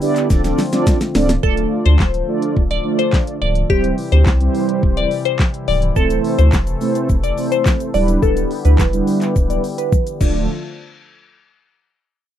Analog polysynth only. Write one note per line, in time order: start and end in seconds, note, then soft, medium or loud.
0.02 0.28 B3 medium
0.02 0.28 D4 medium
0.02 0.28 E4 medium
0.02 0.28 G4 medium
0.02 0.28 D5 loud
0.30 0.41 C4 loud
0.30 0.41 D4 medium
0.30 0.41 F4 medium
0.30 0.41 A4 medium
0.30 0.42 D5 loud
0.44 0.61 C4 medium
0.44 0.61 D4 medium
0.44 0.61 F4 medium
0.44 0.62 A4 medium
0.44 0.62 D5 loud
0.72 0.98 C4 medium
0.72 0.98 D4 medium
0.72 0.98 F4 medium
0.72 0.98 A4 medium
0.72 0.99 D5 loud
1.15 1.32 C4 medium
1.15 1.32 D4 medium
1.15 1.32 F4 medium
1.15 1.32 A4 medium
1.15 1.32 D5 loud
1.43 1.95 A3 medium
1.43 1.95 D4 medium
1.43 1.95 F4 medium
1.43 1.95 D5 medium
2.28 2.63 A3 medium
2.28 2.63 D4 medium
2.28 2.63 F4 medium
2.28 2.63 D5 medium
2.85 3.36 A3 medium
2.85 3.36 D4 medium
2.85 3.37 F4 medium
2.85 3.37 D5 medium
3.70 3.95 G3 medium
3.70 3.96 C4 medium
3.70 3.96 E4 medium
3.70 3.96 C5 medium
4.12 4.29 G3 medium
4.12 4.29 C4 medium
4.12 4.29 E4 medium
4.12 4.30 G4 medium
4.40 5.09 G3 medium
4.40 5.09 C4 medium
4.40 5.09 E4 medium
4.40 5.10 C5 medium
5.96 6.48 A3 medium
5.96 6.48 C4 medium
5.96 6.48 E4 medium
5.96 6.48 C5 medium
6.81 7.15 A3 medium
6.81 7.16 C4 medium
6.81 7.16 E4 medium
6.81 7.16 C5 medium
7.37 7.89 A3 medium
7.37 7.89 C4 medium
7.37 7.89 E4 medium
7.37 7.90 C5 medium
7.94 8.51 G3 medium
7.94 8.51 D4 medium
7.94 8.51 E4 medium
7.94 8.51 B4 medium
8.65 8.82 G3 medium
8.65 8.82 D4 medium
8.65 8.82 E4 medium
8.65 8.82 B4 medium
8.93 9.62 G3 medium
8.93 9.62 D4 medium
8.93 9.62 E4 medium
8.93 9.62 B4 medium
10.20 10.47 A3 medium
10.20 10.47 D4 medium
10.20 10.47 F4 medium
10.20 10.47 D5 loud